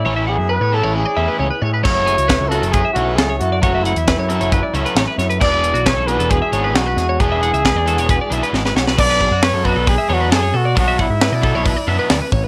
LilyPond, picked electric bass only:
\new Staff \with { instrumentName = "Picked electric bass" } { \clef bass \time 4/4 \key b \dorian \tempo 4 = 135 a,,8. fis,8 a,8 a,,8 r16 e,16 r16 cis,16 r16 a,8 | fis,,8. cis,8 cis,8 fis,,8 r16 b,,8 cis,8 fis,8 | fis,,8. e,8 fis,8 fis,,8 r16 cis,16 r16 a,,16 r16 fis,8 | e,,8. b,,8 b,,8 e,,8 r16 gis,,8 b,,8 e,8 |
e,,8. cis,8 e,8 e,,8 r16 b,,16 r16 gis,,8 b,,8 | b,,8. fis,8 fis,8 b,,8 r16 e,8 fis,8 b,8 | b,,8. gis,8 b,8 b,,8 r16 fis,16 r16 d,16 r16 a,,8 | }